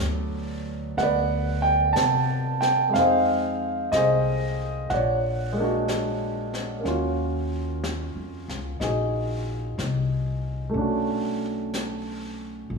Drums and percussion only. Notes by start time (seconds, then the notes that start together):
0.98 brush sweep, snare
1.96 brush sweep, snare, hi-hat pedal
2.62 snare
2.94 brush sweep, snare
3.92 brush sweep, snare, hi-hat pedal
4.90 brush sweep, snare
5.88 brush sweep, snare, hi-hat pedal
6.54 snare
6.85 brush sweep, snare
7.84 brush sweep, snare, hi-hat pedal
8.49 snare
8.81 brush sweep, snare
9.79 brush sweep, snare, hi-hat pedal
10.76 brush sweep
11.74 brush sweep, snare, hi-hat pedal
12.71 brush sweep